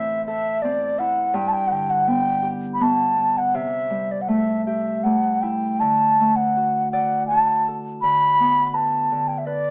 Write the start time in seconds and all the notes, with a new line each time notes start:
Already playing: A2 E3 A3 C4 G4 A4 E5
0.26 A4 E5
0.62 C4 D5
0.99 E4 F#5
1.34 G2 G5
1.48 A5
1.53 G5
1.67 D3 F#5
1.72 G5
1.90 F#5
2.07 B3 G5
2.42 G4
2.74 B5
2.80 B3 A5
3.16 D4
3.37 F#5
3.54 C3 E5
3.90 G3
4.11 D5
4.22 F#5
4.28 A3 E5
4.65 G4 E5
5.04 A3 F#5
5.42 E4 G5
5.80 D3 A5
6.20 A3
6.36 F#5
6.56 F#4
6.92 D5 F#5
7.27 F#4 A5
7.68 A4
8.01 D3 B5
8.40 B3
8.67 B5
8.74 B4 A5
9.12 D3
9.28 G5
9.38 E5
9.46 B4 D5